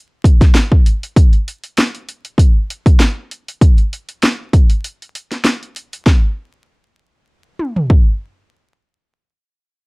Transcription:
0, 0, Header, 1, 2, 480
1, 0, Start_track
1, 0, Tempo, 612245
1, 913, Time_signature, 4, 2, 24, 8
1, 7735, End_track
2, 0, Start_track
2, 0, Title_t, "Drums"
2, 190, Note_on_c, 9, 36, 97
2, 199, Note_on_c, 9, 42, 82
2, 269, Note_off_c, 9, 36, 0
2, 277, Note_off_c, 9, 42, 0
2, 322, Note_on_c, 9, 36, 94
2, 327, Note_on_c, 9, 38, 33
2, 327, Note_on_c, 9, 42, 57
2, 400, Note_off_c, 9, 36, 0
2, 405, Note_off_c, 9, 38, 0
2, 405, Note_off_c, 9, 42, 0
2, 429, Note_on_c, 9, 38, 99
2, 436, Note_on_c, 9, 42, 92
2, 507, Note_off_c, 9, 38, 0
2, 514, Note_off_c, 9, 42, 0
2, 562, Note_on_c, 9, 36, 90
2, 640, Note_off_c, 9, 36, 0
2, 676, Note_on_c, 9, 42, 72
2, 754, Note_off_c, 9, 42, 0
2, 810, Note_on_c, 9, 42, 64
2, 888, Note_off_c, 9, 42, 0
2, 912, Note_on_c, 9, 36, 113
2, 916, Note_on_c, 9, 42, 94
2, 991, Note_off_c, 9, 36, 0
2, 994, Note_off_c, 9, 42, 0
2, 1042, Note_on_c, 9, 42, 36
2, 1120, Note_off_c, 9, 42, 0
2, 1159, Note_on_c, 9, 42, 78
2, 1238, Note_off_c, 9, 42, 0
2, 1282, Note_on_c, 9, 42, 58
2, 1360, Note_off_c, 9, 42, 0
2, 1388, Note_on_c, 9, 42, 89
2, 1398, Note_on_c, 9, 38, 121
2, 1466, Note_off_c, 9, 42, 0
2, 1476, Note_off_c, 9, 38, 0
2, 1526, Note_on_c, 9, 42, 36
2, 1604, Note_off_c, 9, 42, 0
2, 1635, Note_on_c, 9, 42, 70
2, 1714, Note_off_c, 9, 42, 0
2, 1762, Note_on_c, 9, 42, 53
2, 1841, Note_off_c, 9, 42, 0
2, 1866, Note_on_c, 9, 36, 90
2, 1877, Note_on_c, 9, 42, 95
2, 1944, Note_off_c, 9, 36, 0
2, 1956, Note_off_c, 9, 42, 0
2, 2119, Note_on_c, 9, 42, 81
2, 2198, Note_off_c, 9, 42, 0
2, 2242, Note_on_c, 9, 36, 92
2, 2248, Note_on_c, 9, 42, 53
2, 2320, Note_off_c, 9, 36, 0
2, 2326, Note_off_c, 9, 42, 0
2, 2350, Note_on_c, 9, 38, 102
2, 2357, Note_on_c, 9, 42, 94
2, 2428, Note_off_c, 9, 38, 0
2, 2436, Note_off_c, 9, 42, 0
2, 2597, Note_on_c, 9, 42, 72
2, 2676, Note_off_c, 9, 42, 0
2, 2731, Note_on_c, 9, 42, 64
2, 2810, Note_off_c, 9, 42, 0
2, 2833, Note_on_c, 9, 36, 120
2, 2837, Note_on_c, 9, 42, 95
2, 2911, Note_off_c, 9, 36, 0
2, 2916, Note_off_c, 9, 42, 0
2, 2964, Note_on_c, 9, 42, 35
2, 3042, Note_off_c, 9, 42, 0
2, 3081, Note_on_c, 9, 42, 75
2, 3159, Note_off_c, 9, 42, 0
2, 3204, Note_on_c, 9, 42, 56
2, 3282, Note_off_c, 9, 42, 0
2, 3309, Note_on_c, 9, 42, 86
2, 3319, Note_on_c, 9, 38, 118
2, 3388, Note_off_c, 9, 42, 0
2, 3397, Note_off_c, 9, 38, 0
2, 3554, Note_on_c, 9, 36, 88
2, 3556, Note_on_c, 9, 42, 69
2, 3633, Note_off_c, 9, 36, 0
2, 3635, Note_off_c, 9, 42, 0
2, 3682, Note_on_c, 9, 42, 52
2, 3761, Note_off_c, 9, 42, 0
2, 3797, Note_on_c, 9, 42, 90
2, 3876, Note_off_c, 9, 42, 0
2, 3937, Note_on_c, 9, 42, 35
2, 4015, Note_off_c, 9, 42, 0
2, 4039, Note_on_c, 9, 42, 83
2, 4117, Note_off_c, 9, 42, 0
2, 4167, Note_on_c, 9, 38, 33
2, 4167, Note_on_c, 9, 42, 55
2, 4246, Note_off_c, 9, 38, 0
2, 4246, Note_off_c, 9, 42, 0
2, 4269, Note_on_c, 9, 38, 98
2, 4276, Note_on_c, 9, 42, 89
2, 4347, Note_off_c, 9, 38, 0
2, 4355, Note_off_c, 9, 42, 0
2, 4412, Note_on_c, 9, 42, 35
2, 4490, Note_off_c, 9, 42, 0
2, 4517, Note_on_c, 9, 42, 72
2, 4595, Note_off_c, 9, 42, 0
2, 4650, Note_on_c, 9, 42, 62
2, 4729, Note_off_c, 9, 42, 0
2, 4753, Note_on_c, 9, 36, 100
2, 4756, Note_on_c, 9, 38, 86
2, 4831, Note_off_c, 9, 36, 0
2, 4835, Note_off_c, 9, 38, 0
2, 5953, Note_on_c, 9, 47, 59
2, 6032, Note_off_c, 9, 47, 0
2, 6086, Note_on_c, 9, 43, 71
2, 6165, Note_off_c, 9, 43, 0
2, 6193, Note_on_c, 9, 36, 82
2, 6272, Note_off_c, 9, 36, 0
2, 7735, End_track
0, 0, End_of_file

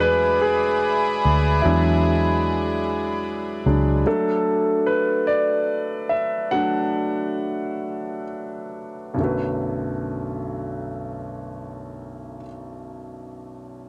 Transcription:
0, 0, Header, 1, 4, 480
1, 0, Start_track
1, 0, Key_signature, 2, "minor"
1, 0, Tempo, 802139
1, 992, Time_signature, 6, 3, 24, 8
1, 2913, Tempo, 835655
1, 4353, Tempo, 904977
1, 5313, Tempo, 941915
1, 7710, End_track
2, 0, Start_track
2, 0, Title_t, "String section"
2, 0, Program_c, 0, 48
2, 0, Note_on_c, 0, 68, 65
2, 0, Note_on_c, 0, 74, 60
2, 0, Note_on_c, 0, 76, 61
2, 0, Note_on_c, 0, 83, 77
2, 2400, Note_off_c, 0, 74, 0
2, 2401, Note_off_c, 0, 76, 0
2, 2401, Note_off_c, 0, 83, 0
2, 2402, Note_off_c, 0, 68, 0
2, 7710, End_track
3, 0, Start_track
3, 0, Title_t, "Grand piano"
3, 0, Program_c, 1, 0
3, 0, Control_c, 1, 64, 127
3, 0, Note_on_c, 1, 54, 45
3, 0, Note_on_c, 1, 56, 39
3, 0, Note_on_c, 1, 62, 50
3, 0, Note_on_c, 1, 68, 86
3, 2, Note_on_c, 1, 71, 86
3, 239, Note_off_c, 1, 71, 0
3, 248, Note_off_c, 1, 68, 0
3, 248, Note_on_c, 1, 68, 73
3, 969, Note_on_c, 1, 64, 64
3, 980, Note_off_c, 1, 54, 0
3, 980, Note_on_c, 1, 54, 45
3, 985, Note_off_c, 1, 56, 0
3, 985, Note_on_c, 1, 56, 42
3, 988, Note_off_c, 1, 62, 0
3, 988, Note_on_c, 1, 62, 48
3, 1002, Note_off_c, 1, 68, 0
3, 1676, Note_off_c, 1, 64, 0
3, 2180, Note_off_c, 1, 54, 0
3, 2182, Note_off_c, 1, 56, 0
3, 2184, Note_off_c, 1, 62, 0
3, 2189, Note_on_c, 1, 54, 37
3, 2191, Note_on_c, 1, 56, 33
3, 2193, Note_on_c, 1, 62, 43
3, 2406, Note_off_c, 1, 54, 0
3, 2407, Note_off_c, 1, 56, 0
3, 2408, Note_off_c, 1, 62, 0
3, 2429, Note_on_c, 1, 54, 46
3, 2433, Note_on_c, 1, 57, 41
3, 2436, Note_on_c, 1, 69, 60
3, 2437, Control_c, 1, 64, 0
3, 2438, Note_on_c, 1, 62, 45
3, 2551, Control_c, 1, 64, 127
3, 2910, Note_on_c, 1, 71, 67
3, 2929, Note_off_c, 1, 69, 0
3, 3123, Note_off_c, 1, 54, 0
3, 3125, Note_off_c, 1, 57, 0
3, 3127, Note_off_c, 1, 62, 0
3, 3144, Note_on_c, 1, 74, 68
3, 3152, Note_off_c, 1, 71, 0
3, 3617, Note_on_c, 1, 76, 62
3, 3633, Note_off_c, 1, 74, 0
3, 3858, Note_on_c, 1, 78, 71
3, 3860, Note_on_c, 1, 54, 36
3, 3865, Note_on_c, 1, 57, 37
3, 3867, Note_off_c, 1, 76, 0
3, 3869, Note_on_c, 1, 62, 45
3, 4800, Note_off_c, 1, 78, 0
3, 5288, Note_on_c, 1, 35, 38
3, 5291, Note_off_c, 1, 54, 0
3, 5293, Note_off_c, 1, 57, 0
3, 5295, Note_off_c, 1, 62, 0
3, 5300, Note_on_c, 1, 42, 36
3, 5311, Note_on_c, 1, 50, 31
3, 5320, Control_c, 1, 64, 0
3, 5323, Note_on_c, 1, 57, 35
3, 5331, Note_on_c, 1, 66, 32
3, 5342, Note_on_c, 1, 71, 41
3, 5400, Control_c, 1, 64, 127
3, 6935, Note_off_c, 1, 35, 0
3, 6947, Note_off_c, 1, 42, 0
3, 6957, Note_off_c, 1, 50, 0
3, 6969, Note_off_c, 1, 57, 0
3, 6977, Note_off_c, 1, 66, 0
3, 6988, Note_off_c, 1, 71, 0
3, 7710, End_track
4, 0, Start_track
4, 0, Title_t, "Fingered electric bass"
4, 0, Program_c, 2, 33
4, 0, Note_on_c, 2, 40, 74
4, 729, Note_off_c, 2, 40, 0
4, 749, Note_on_c, 2, 38, 63
4, 976, Note_off_c, 2, 38, 0
4, 991, Note_on_c, 2, 40, 85
4, 2166, Note_off_c, 2, 40, 0
4, 2191, Note_on_c, 2, 37, 63
4, 2416, Note_off_c, 2, 37, 0
4, 7710, End_track
0, 0, End_of_file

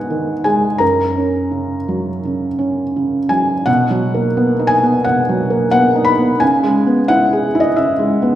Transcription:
0, 0, Header, 1, 2, 480
1, 0, Start_track
1, 0, Key_signature, 5, "major"
1, 0, Tempo, 714286
1, 546, Time_signature, 4, 2, 24, 8
1, 2470, Tempo, 681818
1, 5762, End_track
2, 0, Start_track
2, 0, Title_t, "Felt piano"
2, 0, Program_c, 0, 0
2, 0, Control_c, 0, 64, 127
2, 0, Note_on_c, 0, 44, 62
2, 0, Note_on_c, 0, 51, 42
2, 0, Note_on_c, 0, 56, 42
2, 0, Note_on_c, 0, 59, 43
2, 0, Note_on_c, 0, 66, 55
2, 0, Note_on_c, 0, 68, 59
2, 0, Note_on_c, 0, 78, 71
2, 0, Note_on_c, 0, 80, 77
2, 69, Note_off_c, 0, 51, 0
2, 69, Note_on_c, 0, 51, 42
2, 207, Note_off_c, 0, 59, 0
2, 275, Note_off_c, 0, 66, 0
2, 298, Note_off_c, 0, 80, 0
2, 298, Note_on_c, 0, 80, 66
2, 299, Note_off_c, 0, 78, 0
2, 303, Note_off_c, 0, 68, 0
2, 303, Note_on_c, 0, 68, 52
2, 304, Note_off_c, 0, 56, 0
2, 304, Note_on_c, 0, 56, 38
2, 449, Note_off_c, 0, 51, 0
2, 527, Note_off_c, 0, 68, 0
2, 527, Note_on_c, 0, 82, 71
2, 538, Note_on_c, 0, 70, 53
2, 539, Note_on_c, 0, 42, 52
2, 542, Note_off_c, 0, 80, 0
2, 545, Note_off_c, 0, 56, 0
2, 560, Control_c, 0, 64, 0
2, 565, Note_off_c, 0, 44, 0
2, 660, Control_c, 0, 64, 127
2, 789, Note_on_c, 0, 61, 36
2, 1018, Note_on_c, 0, 49, 37
2, 1175, Note_off_c, 0, 61, 0
2, 1266, Note_on_c, 0, 54, 39
2, 1408, Note_off_c, 0, 49, 0
2, 1480, Note_off_c, 0, 42, 0
2, 1512, Note_on_c, 0, 49, 35
2, 1651, Note_off_c, 0, 54, 0
2, 1738, Note_on_c, 0, 61, 40
2, 1895, Note_off_c, 0, 49, 0
2, 1991, Note_on_c, 0, 49, 41
2, 2129, Note_off_c, 0, 61, 0
2, 2201, Note_off_c, 0, 70, 0
2, 2212, Note_on_c, 0, 80, 72
2, 2220, Note_on_c, 0, 54, 34
2, 2222, Note_off_c, 0, 82, 0
2, 2376, Note_off_c, 0, 49, 0
2, 2457, Note_on_c, 0, 78, 84
2, 2459, Note_off_c, 0, 80, 0
2, 2462, Note_off_c, 0, 54, 0
2, 2465, Note_on_c, 0, 47, 65
2, 2483, Control_c, 0, 64, 0
2, 2593, Control_c, 0, 64, 127
2, 2629, Note_on_c, 0, 54, 51
2, 2800, Note_on_c, 0, 58, 46
2, 2890, Note_off_c, 0, 54, 0
2, 2959, Note_on_c, 0, 59, 51
2, 3057, Note_off_c, 0, 58, 0
2, 3117, Note_on_c, 0, 63, 50
2, 3172, Note_on_c, 0, 80, 88
2, 3193, Note_off_c, 0, 78, 0
2, 3217, Note_off_c, 0, 59, 0
2, 3284, Note_on_c, 0, 59, 51
2, 3375, Note_off_c, 0, 63, 0
2, 3410, Note_off_c, 0, 47, 0
2, 3426, Note_off_c, 0, 80, 0
2, 3434, Note_on_c, 0, 78, 80
2, 3447, Note_on_c, 0, 47, 46
2, 3538, Note_off_c, 0, 59, 0
2, 3607, Note_on_c, 0, 54, 48
2, 3756, Note_on_c, 0, 58, 53
2, 3860, Note_off_c, 0, 54, 0
2, 3895, Note_off_c, 0, 78, 0
2, 3905, Note_on_c, 0, 78, 94
2, 3917, Note_on_c, 0, 59, 57
2, 4014, Note_off_c, 0, 58, 0
2, 4075, Note_on_c, 0, 63, 49
2, 4139, Note_on_c, 0, 83, 84
2, 4152, Note_off_c, 0, 78, 0
2, 4174, Note_off_c, 0, 59, 0
2, 4241, Note_on_c, 0, 59, 46
2, 4333, Note_off_c, 0, 63, 0
2, 4375, Note_off_c, 0, 47, 0
2, 4388, Note_on_c, 0, 80, 91
2, 4389, Note_off_c, 0, 83, 0
2, 4400, Note_off_c, 0, 59, 0
2, 4400, Note_on_c, 0, 49, 65
2, 4411, Control_c, 0, 64, 0
2, 4537, Control_c, 0, 64, 127
2, 4552, Note_on_c, 0, 56, 49
2, 4717, Note_on_c, 0, 59, 47
2, 4808, Note_off_c, 0, 56, 0
2, 4869, Note_off_c, 0, 80, 0
2, 4869, Note_on_c, 0, 78, 91
2, 4879, Note_on_c, 0, 64, 52
2, 4970, Note_off_c, 0, 59, 0
2, 5042, Note_on_c, 0, 68, 56
2, 5131, Note_off_c, 0, 64, 0
2, 5197, Note_on_c, 0, 64, 54
2, 5230, Note_off_c, 0, 78, 0
2, 5234, Note_on_c, 0, 75, 80
2, 5293, Note_off_c, 0, 68, 0
2, 5325, Note_off_c, 0, 49, 0
2, 5348, Note_on_c, 0, 76, 71
2, 5353, Note_off_c, 0, 75, 0
2, 5355, Note_on_c, 0, 49, 49
2, 5450, Note_off_c, 0, 64, 0
2, 5507, Note_on_c, 0, 56, 47
2, 5670, Note_on_c, 0, 59, 53
2, 5762, Note_off_c, 0, 49, 0
2, 5762, Note_off_c, 0, 56, 0
2, 5762, Note_off_c, 0, 59, 0
2, 5762, Note_off_c, 0, 76, 0
2, 5762, End_track
0, 0, End_of_file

